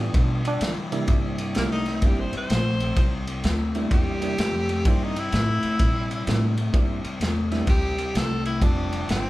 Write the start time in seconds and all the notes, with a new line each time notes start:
Already playing: G2 A2
0.00 E3 A3 B3 D4 F4
0.13 G2 B2 D3, kick, ride
0.44 G2 D3 D4, ride
0.61 G2 D3 E3, snare, ride
0.92 G2 C3 E3 G3 A#3 D4 E4, ride
1.08 G2 C3 G3, kick, ride
1.38 C3 G3, ride
1.55 C2 C3 G3 A3 A#3 C4 D4 E4, snare, ride
1.72 D#4
1.86 C3 A3, snare, ride
2.02 G1 C3 G3 A#3 C4 D4 E4, kick, ride
2.06 G4
2.20 C5
2.33 C3 G3, muted upright bass stroke, ride
2.37 C5
2.49 A#1 C3 A3, snare, ride
2.80 C3 A3, ride
2.96 C2 C3 G3, kick, ride
3.27 C3 G3, ride
3.44 D2 C3 A3, snare, ride
3.75 C3 G3 A3 A#3 C4 D4 E4, ride
3.91 E2 C3 G3 G4, kick, ride
4.22 C3 G3 A#3 C4 D4 E4, ride
4.38 F2 C3 A3, snare, ride
4.69 C3 A3, ride
4.85 G2 C3 G3 A#3 C4 D4 E4, kick, ride
5.04 D#4
5.15 C3 G3 E4, ride
5.32 A2 C3 A3, snare, ride
5.63 C3 A3, muted upright bass stroke, ride
5.79 A#2 C3 G3, kick, ride
6.10 C3 G3, ride
6.27 A2 C3 G3 A3 A#3 C4 D4 E4, snare, ride
6.56 C3 A3, ride
6.73 G2 C3 G3 A#3 C4 D4 E4, kick, ride
7.04 C3 G3, muted upright bass stroke, ride
7.20 E2 C3 A3, snare, ride
7.51 C3 G3 A3 A#3 C4 D4 E4, snare, ride
7.67 D2 C3 G3 G4, kick, ride
7.98 C3 G3, ride
8.15 C2 C3 A3 A4, snare, ride
8.45 C3 A3 E4, ride
8.62 F1 F2 C3 G3 A3 C4 D4 F4, kick, ride
8.92 F2 C3, ride
9.09 G1 F2 D3 C4, snare, ride